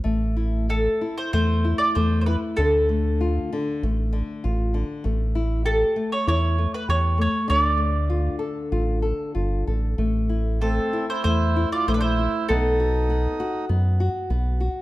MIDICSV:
0, 0, Header, 1, 5, 480
1, 0, Start_track
1, 0, Key_signature, 0, "minor"
1, 0, Tempo, 630915
1, 36, Time_signature, 4, 2, 24, 8
1, 2915, Tempo, 609756
1, 6275, Tempo, 628272
1, 9635, Tempo, 602410
1, 11484, End_track
2, 0, Start_track
2, 0, Title_t, "Mandolin"
2, 0, Program_c, 0, 25
2, 532, Note_on_c, 0, 69, 69
2, 894, Note_on_c, 0, 72, 74
2, 904, Note_off_c, 0, 69, 0
2, 1005, Note_off_c, 0, 72, 0
2, 1013, Note_on_c, 0, 72, 79
2, 1353, Note_off_c, 0, 72, 0
2, 1356, Note_on_c, 0, 74, 75
2, 1475, Note_off_c, 0, 74, 0
2, 1484, Note_on_c, 0, 72, 77
2, 1661, Note_off_c, 0, 72, 0
2, 1684, Note_on_c, 0, 72, 59
2, 1719, Note_off_c, 0, 72, 0
2, 1722, Note_on_c, 0, 71, 70
2, 1786, Note_off_c, 0, 71, 0
2, 1952, Note_on_c, 0, 69, 70
2, 2876, Note_off_c, 0, 69, 0
2, 4351, Note_on_c, 0, 69, 76
2, 4719, Note_on_c, 0, 73, 74
2, 4723, Note_off_c, 0, 69, 0
2, 4836, Note_off_c, 0, 73, 0
2, 4846, Note_on_c, 0, 73, 77
2, 5204, Note_off_c, 0, 73, 0
2, 5207, Note_on_c, 0, 71, 69
2, 5325, Note_off_c, 0, 71, 0
2, 5328, Note_on_c, 0, 73, 81
2, 5569, Note_off_c, 0, 73, 0
2, 5579, Note_on_c, 0, 73, 76
2, 5797, Note_off_c, 0, 73, 0
2, 5800, Note_on_c, 0, 74, 80
2, 6720, Note_off_c, 0, 74, 0
2, 8197, Note_on_c, 0, 69, 66
2, 8532, Note_off_c, 0, 69, 0
2, 8566, Note_on_c, 0, 72, 70
2, 8665, Note_off_c, 0, 72, 0
2, 8674, Note_on_c, 0, 72, 81
2, 9012, Note_off_c, 0, 72, 0
2, 9044, Note_on_c, 0, 74, 75
2, 9161, Note_off_c, 0, 74, 0
2, 9164, Note_on_c, 0, 72, 78
2, 9207, Note_off_c, 0, 72, 0
2, 9210, Note_on_c, 0, 71, 71
2, 9256, Note_off_c, 0, 71, 0
2, 9260, Note_on_c, 0, 72, 76
2, 9626, Note_on_c, 0, 69, 65
2, 9642, Note_off_c, 0, 72, 0
2, 10552, Note_off_c, 0, 69, 0
2, 11484, End_track
3, 0, Start_track
3, 0, Title_t, "Accordion"
3, 0, Program_c, 1, 21
3, 8193, Note_on_c, 1, 60, 57
3, 8530, Note_off_c, 1, 60, 0
3, 8562, Note_on_c, 1, 64, 66
3, 8671, Note_off_c, 1, 64, 0
3, 8692, Note_on_c, 1, 64, 64
3, 9021, Note_off_c, 1, 64, 0
3, 9054, Note_on_c, 1, 65, 66
3, 9159, Note_off_c, 1, 65, 0
3, 9164, Note_on_c, 1, 64, 68
3, 9211, Note_off_c, 1, 64, 0
3, 9227, Note_on_c, 1, 62, 58
3, 9270, Note_off_c, 1, 62, 0
3, 9277, Note_on_c, 1, 64, 75
3, 9614, Note_off_c, 1, 64, 0
3, 9631, Note_on_c, 1, 63, 61
3, 10555, Note_off_c, 1, 63, 0
3, 11484, End_track
4, 0, Start_track
4, 0, Title_t, "Nylon-string guitar"
4, 0, Program_c, 2, 24
4, 29, Note_on_c, 2, 57, 50
4, 278, Note_on_c, 2, 64, 38
4, 517, Note_off_c, 2, 57, 0
4, 518, Note_off_c, 2, 64, 0
4, 527, Note_on_c, 2, 57, 46
4, 763, Note_off_c, 2, 57, 0
4, 771, Note_on_c, 2, 64, 45
4, 1004, Note_off_c, 2, 64, 0
4, 1013, Note_on_c, 2, 57, 51
4, 1245, Note_off_c, 2, 57, 0
4, 1252, Note_on_c, 2, 64, 47
4, 1485, Note_off_c, 2, 64, 0
4, 1490, Note_on_c, 2, 57, 49
4, 1722, Note_off_c, 2, 57, 0
4, 1731, Note_on_c, 2, 64, 44
4, 1959, Note_off_c, 2, 64, 0
4, 1971, Note_on_c, 2, 50, 59
4, 2199, Note_on_c, 2, 57, 46
4, 2431, Note_off_c, 2, 57, 0
4, 2439, Note_on_c, 2, 65, 50
4, 2671, Note_off_c, 2, 65, 0
4, 2673, Note_off_c, 2, 50, 0
4, 2682, Note_on_c, 2, 50, 56
4, 2909, Note_off_c, 2, 50, 0
4, 2917, Note_on_c, 2, 57, 57
4, 3147, Note_on_c, 2, 50, 52
4, 3150, Note_off_c, 2, 57, 0
4, 3384, Note_off_c, 2, 50, 0
4, 3393, Note_on_c, 2, 65, 47
4, 3626, Note_off_c, 2, 65, 0
4, 3630, Note_on_c, 2, 50, 52
4, 3864, Note_off_c, 2, 50, 0
4, 3867, Note_on_c, 2, 57, 59
4, 4113, Note_on_c, 2, 64, 49
4, 4345, Note_off_c, 2, 64, 0
4, 4348, Note_on_c, 2, 67, 50
4, 4582, Note_off_c, 2, 57, 0
4, 4583, Note_off_c, 2, 67, 0
4, 4591, Note_on_c, 2, 57, 52
4, 4825, Note_off_c, 2, 57, 0
4, 4838, Note_on_c, 2, 64, 56
4, 5069, Note_off_c, 2, 64, 0
4, 5081, Note_on_c, 2, 57, 47
4, 5312, Note_off_c, 2, 57, 0
4, 5319, Note_on_c, 2, 67, 44
4, 5550, Note_off_c, 2, 67, 0
4, 5550, Note_on_c, 2, 57, 46
4, 5785, Note_off_c, 2, 57, 0
4, 5786, Note_on_c, 2, 50, 54
4, 6020, Note_on_c, 2, 57, 42
4, 6259, Note_off_c, 2, 57, 0
4, 6272, Note_on_c, 2, 65, 45
4, 6493, Note_off_c, 2, 65, 0
4, 6496, Note_on_c, 2, 69, 46
4, 6734, Note_off_c, 2, 69, 0
4, 6749, Note_on_c, 2, 65, 46
4, 6978, Note_off_c, 2, 65, 0
4, 6981, Note_on_c, 2, 69, 44
4, 7221, Note_off_c, 2, 69, 0
4, 7228, Note_on_c, 2, 65, 41
4, 7465, Note_off_c, 2, 65, 0
4, 7478, Note_on_c, 2, 69, 38
4, 7678, Note_off_c, 2, 50, 0
4, 7707, Note_off_c, 2, 69, 0
4, 7713, Note_on_c, 2, 57, 53
4, 7952, Note_on_c, 2, 64, 41
4, 8182, Note_off_c, 2, 57, 0
4, 8185, Note_off_c, 2, 64, 0
4, 8192, Note_on_c, 2, 57, 43
4, 8427, Note_off_c, 2, 57, 0
4, 8438, Note_on_c, 2, 64, 48
4, 8670, Note_off_c, 2, 64, 0
4, 8672, Note_on_c, 2, 57, 52
4, 8907, Note_off_c, 2, 57, 0
4, 8921, Note_on_c, 2, 64, 48
4, 9154, Note_off_c, 2, 64, 0
4, 9166, Note_on_c, 2, 57, 46
4, 9395, Note_off_c, 2, 57, 0
4, 9399, Note_on_c, 2, 64, 44
4, 9627, Note_off_c, 2, 64, 0
4, 9636, Note_on_c, 2, 59, 61
4, 9874, Note_on_c, 2, 66, 47
4, 10103, Note_off_c, 2, 59, 0
4, 10105, Note_off_c, 2, 66, 0
4, 10113, Note_on_c, 2, 59, 47
4, 10343, Note_off_c, 2, 59, 0
4, 10352, Note_on_c, 2, 66, 54
4, 10583, Note_off_c, 2, 66, 0
4, 10587, Note_on_c, 2, 59, 50
4, 10822, Note_off_c, 2, 59, 0
4, 10834, Note_on_c, 2, 66, 50
4, 11067, Note_off_c, 2, 66, 0
4, 11072, Note_on_c, 2, 59, 49
4, 11307, Note_off_c, 2, 59, 0
4, 11314, Note_on_c, 2, 66, 46
4, 11484, Note_off_c, 2, 66, 0
4, 11484, End_track
5, 0, Start_track
5, 0, Title_t, "Analog synth bass"
5, 0, Program_c, 3, 38
5, 38, Note_on_c, 3, 33, 99
5, 671, Note_off_c, 3, 33, 0
5, 1015, Note_on_c, 3, 40, 88
5, 1326, Note_off_c, 3, 40, 0
5, 1492, Note_on_c, 3, 40, 87
5, 1800, Note_off_c, 3, 40, 0
5, 1963, Note_on_c, 3, 38, 97
5, 2580, Note_off_c, 3, 38, 0
5, 2913, Note_on_c, 3, 33, 89
5, 3226, Note_off_c, 3, 33, 0
5, 3399, Note_on_c, 3, 33, 97
5, 3708, Note_off_c, 3, 33, 0
5, 3874, Note_on_c, 3, 33, 98
5, 4498, Note_off_c, 3, 33, 0
5, 4838, Note_on_c, 3, 40, 90
5, 5150, Note_off_c, 3, 40, 0
5, 5321, Note_on_c, 3, 40, 86
5, 5631, Note_off_c, 3, 40, 0
5, 5802, Note_on_c, 3, 38, 94
5, 6424, Note_off_c, 3, 38, 0
5, 6747, Note_on_c, 3, 33, 86
5, 7062, Note_off_c, 3, 33, 0
5, 7233, Note_on_c, 3, 31, 74
5, 7450, Note_off_c, 3, 31, 0
5, 7477, Note_on_c, 3, 33, 77
5, 7691, Note_off_c, 3, 33, 0
5, 7711, Note_on_c, 3, 33, 102
5, 8337, Note_off_c, 3, 33, 0
5, 8680, Note_on_c, 3, 40, 81
5, 8992, Note_off_c, 3, 40, 0
5, 9161, Note_on_c, 3, 34, 84
5, 9469, Note_off_c, 3, 34, 0
5, 9635, Note_on_c, 3, 35, 100
5, 10255, Note_off_c, 3, 35, 0
5, 10590, Note_on_c, 3, 42, 83
5, 10904, Note_off_c, 3, 42, 0
5, 11071, Note_on_c, 3, 35, 91
5, 11384, Note_off_c, 3, 35, 0
5, 11484, End_track
0, 0, End_of_file